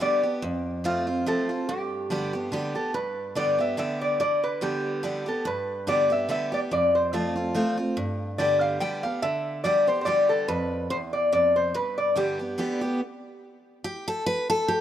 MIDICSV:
0, 0, Header, 1, 3, 480
1, 0, Start_track
1, 0, Tempo, 419287
1, 493, Time_signature, 3, 2, 24, 8
1, 16951, End_track
2, 0, Start_track
2, 0, Title_t, "Resonator guitar played with a steel bar"
2, 0, Program_c, 0, 25
2, 25, Note_on_c, 0, 74, 93
2, 366, Note_off_c, 0, 74, 0
2, 979, Note_on_c, 0, 65, 91
2, 1423, Note_off_c, 0, 65, 0
2, 1463, Note_on_c, 0, 69, 93
2, 1905, Note_off_c, 0, 69, 0
2, 1933, Note_on_c, 0, 67, 98
2, 2757, Note_off_c, 0, 67, 0
2, 2757, Note_on_c, 0, 65, 98
2, 3111, Note_off_c, 0, 65, 0
2, 3153, Note_on_c, 0, 69, 87
2, 3365, Note_off_c, 0, 69, 0
2, 3369, Note_on_c, 0, 71, 98
2, 3817, Note_off_c, 0, 71, 0
2, 3852, Note_on_c, 0, 74, 103
2, 4097, Note_off_c, 0, 74, 0
2, 4128, Note_on_c, 0, 76, 93
2, 4326, Note_off_c, 0, 76, 0
2, 4340, Note_on_c, 0, 76, 98
2, 4591, Note_off_c, 0, 76, 0
2, 4595, Note_on_c, 0, 74, 98
2, 4801, Note_off_c, 0, 74, 0
2, 4815, Note_on_c, 0, 74, 103
2, 5078, Note_on_c, 0, 71, 98
2, 5084, Note_off_c, 0, 74, 0
2, 5277, Note_off_c, 0, 71, 0
2, 5292, Note_on_c, 0, 67, 93
2, 5988, Note_off_c, 0, 67, 0
2, 6049, Note_on_c, 0, 69, 97
2, 6242, Note_off_c, 0, 69, 0
2, 6263, Note_on_c, 0, 71, 97
2, 6702, Note_off_c, 0, 71, 0
2, 6737, Note_on_c, 0, 74, 107
2, 6978, Note_off_c, 0, 74, 0
2, 7007, Note_on_c, 0, 76, 86
2, 7210, Note_off_c, 0, 76, 0
2, 7224, Note_on_c, 0, 76, 94
2, 7481, Note_off_c, 0, 76, 0
2, 7486, Note_on_c, 0, 74, 89
2, 7543, Note_off_c, 0, 74, 0
2, 7701, Note_on_c, 0, 74, 99
2, 7939, Note_off_c, 0, 74, 0
2, 7957, Note_on_c, 0, 72, 84
2, 8174, Note_on_c, 0, 69, 70
2, 8175, Note_off_c, 0, 72, 0
2, 8867, Note_off_c, 0, 69, 0
2, 9597, Note_on_c, 0, 74, 96
2, 9845, Note_off_c, 0, 74, 0
2, 9857, Note_on_c, 0, 77, 95
2, 10074, Note_off_c, 0, 77, 0
2, 10079, Note_on_c, 0, 79, 98
2, 10326, Note_off_c, 0, 79, 0
2, 10339, Note_on_c, 0, 77, 98
2, 10555, Note_off_c, 0, 77, 0
2, 10559, Note_on_c, 0, 76, 110
2, 11007, Note_off_c, 0, 76, 0
2, 11033, Note_on_c, 0, 74, 99
2, 11309, Note_on_c, 0, 72, 89
2, 11310, Note_off_c, 0, 74, 0
2, 11449, Note_off_c, 0, 72, 0
2, 11463, Note_on_c, 0, 72, 77
2, 11506, Note_on_c, 0, 74, 97
2, 11520, Note_off_c, 0, 72, 0
2, 11759, Note_off_c, 0, 74, 0
2, 11782, Note_on_c, 0, 69, 90
2, 11986, Note_off_c, 0, 69, 0
2, 12000, Note_on_c, 0, 71, 106
2, 12448, Note_off_c, 0, 71, 0
2, 12483, Note_on_c, 0, 72, 94
2, 12554, Note_off_c, 0, 72, 0
2, 12741, Note_on_c, 0, 74, 84
2, 12957, Note_off_c, 0, 74, 0
2, 12970, Note_on_c, 0, 74, 95
2, 13233, Note_on_c, 0, 72, 90
2, 13239, Note_off_c, 0, 74, 0
2, 13451, Note_off_c, 0, 72, 0
2, 13455, Note_on_c, 0, 71, 93
2, 13696, Note_off_c, 0, 71, 0
2, 13711, Note_on_c, 0, 74, 90
2, 13911, Note_off_c, 0, 74, 0
2, 13936, Note_on_c, 0, 67, 73
2, 14629, Note_off_c, 0, 67, 0
2, 16951, End_track
3, 0, Start_track
3, 0, Title_t, "Steel-string acoustic guitar"
3, 0, Program_c, 1, 25
3, 0, Note_on_c, 1, 50, 89
3, 6, Note_on_c, 1, 55, 82
3, 12, Note_on_c, 1, 59, 95
3, 18, Note_on_c, 1, 67, 86
3, 253, Note_off_c, 1, 67, 0
3, 260, Note_off_c, 1, 50, 0
3, 263, Note_off_c, 1, 55, 0
3, 266, Note_off_c, 1, 59, 0
3, 267, Note_on_c, 1, 67, 56
3, 285, Note_on_c, 1, 59, 47
3, 480, Note_off_c, 1, 67, 0
3, 485, Note_on_c, 1, 41, 100
3, 489, Note_off_c, 1, 59, 0
3, 963, Note_on_c, 1, 53, 85
3, 971, Note_on_c, 1, 57, 98
3, 974, Note_on_c, 1, 60, 88
3, 981, Note_on_c, 1, 65, 91
3, 1211, Note_off_c, 1, 65, 0
3, 1221, Note_off_c, 1, 53, 0
3, 1224, Note_on_c, 1, 65, 58
3, 1226, Note_off_c, 1, 57, 0
3, 1227, Note_off_c, 1, 60, 0
3, 1244, Note_on_c, 1, 60, 47
3, 1406, Note_off_c, 1, 41, 0
3, 1439, Note_off_c, 1, 65, 0
3, 1447, Note_on_c, 1, 53, 84
3, 1448, Note_off_c, 1, 60, 0
3, 1454, Note_on_c, 1, 57, 91
3, 1460, Note_on_c, 1, 60, 85
3, 1463, Note_on_c, 1, 65, 83
3, 1692, Note_off_c, 1, 65, 0
3, 1703, Note_off_c, 1, 53, 0
3, 1706, Note_on_c, 1, 65, 58
3, 1707, Note_off_c, 1, 57, 0
3, 1710, Note_off_c, 1, 60, 0
3, 1725, Note_on_c, 1, 60, 45
3, 1919, Note_off_c, 1, 65, 0
3, 1929, Note_off_c, 1, 60, 0
3, 1932, Note_on_c, 1, 43, 98
3, 2406, Note_on_c, 1, 50, 85
3, 2413, Note_on_c, 1, 55, 87
3, 2420, Note_on_c, 1, 59, 96
3, 2425, Note_on_c, 1, 67, 95
3, 2656, Note_off_c, 1, 67, 0
3, 2663, Note_off_c, 1, 50, 0
3, 2666, Note_off_c, 1, 55, 0
3, 2670, Note_off_c, 1, 59, 0
3, 2670, Note_on_c, 1, 67, 65
3, 2689, Note_on_c, 1, 59, 51
3, 2849, Note_off_c, 1, 43, 0
3, 2881, Note_off_c, 1, 67, 0
3, 2882, Note_on_c, 1, 50, 83
3, 2883, Note_off_c, 1, 59, 0
3, 2894, Note_on_c, 1, 55, 84
3, 2897, Note_on_c, 1, 59, 98
3, 2902, Note_on_c, 1, 67, 101
3, 3131, Note_off_c, 1, 67, 0
3, 3141, Note_off_c, 1, 50, 0
3, 3145, Note_on_c, 1, 67, 51
3, 3146, Note_off_c, 1, 55, 0
3, 3148, Note_off_c, 1, 59, 0
3, 3163, Note_on_c, 1, 59, 45
3, 3358, Note_off_c, 1, 67, 0
3, 3367, Note_off_c, 1, 59, 0
3, 3368, Note_on_c, 1, 43, 92
3, 3839, Note_on_c, 1, 50, 77
3, 3849, Note_on_c, 1, 55, 89
3, 3852, Note_on_c, 1, 59, 97
3, 3859, Note_on_c, 1, 67, 99
3, 4090, Note_off_c, 1, 67, 0
3, 4099, Note_off_c, 1, 50, 0
3, 4103, Note_on_c, 1, 67, 63
3, 4104, Note_off_c, 1, 55, 0
3, 4105, Note_off_c, 1, 59, 0
3, 4121, Note_on_c, 1, 59, 52
3, 4286, Note_off_c, 1, 43, 0
3, 4317, Note_off_c, 1, 67, 0
3, 4319, Note_off_c, 1, 59, 0
3, 4319, Note_on_c, 1, 50, 89
3, 4327, Note_on_c, 1, 55, 83
3, 4333, Note_on_c, 1, 59, 81
3, 4337, Note_on_c, 1, 67, 100
3, 4783, Note_off_c, 1, 50, 0
3, 4787, Note_off_c, 1, 55, 0
3, 4790, Note_off_c, 1, 59, 0
3, 4792, Note_off_c, 1, 67, 0
3, 4806, Note_on_c, 1, 50, 92
3, 5266, Note_off_c, 1, 50, 0
3, 5280, Note_on_c, 1, 50, 78
3, 5288, Note_on_c, 1, 55, 97
3, 5294, Note_on_c, 1, 59, 88
3, 5299, Note_on_c, 1, 67, 84
3, 5743, Note_off_c, 1, 50, 0
3, 5747, Note_off_c, 1, 55, 0
3, 5750, Note_off_c, 1, 59, 0
3, 5752, Note_off_c, 1, 67, 0
3, 5758, Note_on_c, 1, 50, 80
3, 5765, Note_on_c, 1, 55, 84
3, 5772, Note_on_c, 1, 59, 80
3, 5780, Note_on_c, 1, 67, 91
3, 6007, Note_off_c, 1, 67, 0
3, 6016, Note_off_c, 1, 50, 0
3, 6020, Note_off_c, 1, 55, 0
3, 6021, Note_on_c, 1, 67, 64
3, 6024, Note_off_c, 1, 59, 0
3, 6039, Note_on_c, 1, 59, 52
3, 6234, Note_off_c, 1, 67, 0
3, 6241, Note_on_c, 1, 43, 100
3, 6243, Note_off_c, 1, 59, 0
3, 6719, Note_on_c, 1, 50, 85
3, 6724, Note_on_c, 1, 55, 97
3, 6731, Note_on_c, 1, 59, 92
3, 6734, Note_on_c, 1, 67, 94
3, 6969, Note_off_c, 1, 67, 0
3, 6976, Note_off_c, 1, 50, 0
3, 6979, Note_off_c, 1, 55, 0
3, 6982, Note_off_c, 1, 59, 0
3, 6982, Note_on_c, 1, 67, 66
3, 6997, Note_on_c, 1, 59, 52
3, 7160, Note_off_c, 1, 43, 0
3, 7194, Note_off_c, 1, 67, 0
3, 7196, Note_on_c, 1, 50, 92
3, 7198, Note_off_c, 1, 59, 0
3, 7204, Note_on_c, 1, 55, 89
3, 7212, Note_on_c, 1, 59, 96
3, 7214, Note_on_c, 1, 67, 91
3, 7449, Note_off_c, 1, 67, 0
3, 7454, Note_off_c, 1, 50, 0
3, 7458, Note_off_c, 1, 55, 0
3, 7462, Note_off_c, 1, 59, 0
3, 7462, Note_on_c, 1, 67, 63
3, 7483, Note_on_c, 1, 59, 48
3, 7674, Note_off_c, 1, 67, 0
3, 7684, Note_off_c, 1, 59, 0
3, 7686, Note_on_c, 1, 41, 93
3, 8161, Note_on_c, 1, 53, 81
3, 8167, Note_on_c, 1, 57, 85
3, 8174, Note_on_c, 1, 60, 88
3, 8181, Note_on_c, 1, 65, 98
3, 8408, Note_off_c, 1, 65, 0
3, 8416, Note_off_c, 1, 53, 0
3, 8419, Note_off_c, 1, 57, 0
3, 8421, Note_on_c, 1, 65, 54
3, 8423, Note_off_c, 1, 60, 0
3, 8439, Note_on_c, 1, 60, 49
3, 8602, Note_off_c, 1, 41, 0
3, 8632, Note_off_c, 1, 65, 0
3, 8638, Note_off_c, 1, 60, 0
3, 8638, Note_on_c, 1, 53, 84
3, 8644, Note_on_c, 1, 57, 92
3, 8652, Note_on_c, 1, 60, 87
3, 8655, Note_on_c, 1, 65, 91
3, 8887, Note_off_c, 1, 65, 0
3, 8894, Note_off_c, 1, 53, 0
3, 8897, Note_off_c, 1, 57, 0
3, 8900, Note_on_c, 1, 65, 62
3, 8901, Note_off_c, 1, 60, 0
3, 8921, Note_on_c, 1, 60, 48
3, 9112, Note_off_c, 1, 65, 0
3, 9122, Note_off_c, 1, 60, 0
3, 9122, Note_on_c, 1, 43, 96
3, 9598, Note_on_c, 1, 50, 90
3, 9607, Note_on_c, 1, 55, 93
3, 9611, Note_on_c, 1, 59, 88
3, 9615, Note_on_c, 1, 67, 99
3, 10039, Note_off_c, 1, 43, 0
3, 10059, Note_off_c, 1, 50, 0
3, 10063, Note_off_c, 1, 55, 0
3, 10066, Note_off_c, 1, 59, 0
3, 10067, Note_off_c, 1, 67, 0
3, 10078, Note_on_c, 1, 50, 78
3, 10085, Note_on_c, 1, 55, 84
3, 10092, Note_on_c, 1, 59, 98
3, 10097, Note_on_c, 1, 67, 93
3, 10325, Note_off_c, 1, 67, 0
3, 10334, Note_off_c, 1, 50, 0
3, 10337, Note_off_c, 1, 55, 0
3, 10339, Note_on_c, 1, 67, 55
3, 10341, Note_off_c, 1, 59, 0
3, 10359, Note_on_c, 1, 59, 47
3, 10551, Note_off_c, 1, 67, 0
3, 10560, Note_off_c, 1, 59, 0
3, 10560, Note_on_c, 1, 50, 96
3, 11025, Note_off_c, 1, 50, 0
3, 11039, Note_on_c, 1, 50, 93
3, 11045, Note_on_c, 1, 55, 90
3, 11052, Note_on_c, 1, 59, 92
3, 11058, Note_on_c, 1, 67, 95
3, 11289, Note_off_c, 1, 67, 0
3, 11294, Note_off_c, 1, 50, 0
3, 11298, Note_off_c, 1, 55, 0
3, 11301, Note_off_c, 1, 59, 0
3, 11303, Note_on_c, 1, 67, 64
3, 11323, Note_on_c, 1, 59, 47
3, 11513, Note_off_c, 1, 67, 0
3, 11514, Note_on_c, 1, 50, 78
3, 11515, Note_off_c, 1, 59, 0
3, 11524, Note_on_c, 1, 55, 89
3, 11529, Note_on_c, 1, 59, 84
3, 11535, Note_on_c, 1, 67, 87
3, 11977, Note_off_c, 1, 50, 0
3, 11982, Note_off_c, 1, 55, 0
3, 11984, Note_off_c, 1, 59, 0
3, 11988, Note_off_c, 1, 67, 0
3, 12003, Note_on_c, 1, 41, 97
3, 12477, Note_off_c, 1, 41, 0
3, 12481, Note_on_c, 1, 40, 90
3, 12941, Note_off_c, 1, 40, 0
3, 12965, Note_on_c, 1, 41, 89
3, 13423, Note_off_c, 1, 41, 0
3, 13445, Note_on_c, 1, 43, 92
3, 13916, Note_on_c, 1, 50, 82
3, 13923, Note_on_c, 1, 55, 102
3, 13928, Note_on_c, 1, 59, 90
3, 13934, Note_on_c, 1, 67, 101
3, 14174, Note_off_c, 1, 50, 0
3, 14174, Note_off_c, 1, 67, 0
3, 14178, Note_off_c, 1, 55, 0
3, 14180, Note_off_c, 1, 59, 0
3, 14188, Note_on_c, 1, 67, 58
3, 14206, Note_on_c, 1, 59, 47
3, 14362, Note_off_c, 1, 43, 0
3, 14396, Note_off_c, 1, 67, 0
3, 14397, Note_off_c, 1, 59, 0
3, 14399, Note_on_c, 1, 50, 83
3, 14403, Note_on_c, 1, 55, 84
3, 14411, Note_on_c, 1, 59, 86
3, 14417, Note_on_c, 1, 67, 97
3, 14654, Note_off_c, 1, 67, 0
3, 14656, Note_off_c, 1, 50, 0
3, 14658, Note_off_c, 1, 55, 0
3, 14662, Note_off_c, 1, 59, 0
3, 14667, Note_on_c, 1, 67, 59
3, 14684, Note_on_c, 1, 59, 46
3, 14876, Note_off_c, 1, 67, 0
3, 14885, Note_off_c, 1, 59, 0
3, 15848, Note_on_c, 1, 67, 81
3, 16104, Note_off_c, 1, 67, 0
3, 16115, Note_on_c, 1, 69, 89
3, 16323, Note_off_c, 1, 69, 0
3, 16330, Note_on_c, 1, 71, 95
3, 16586, Note_off_c, 1, 71, 0
3, 16595, Note_on_c, 1, 69, 98
3, 16804, Note_off_c, 1, 69, 0
3, 16810, Note_on_c, 1, 67, 84
3, 16951, Note_off_c, 1, 67, 0
3, 16951, End_track
0, 0, End_of_file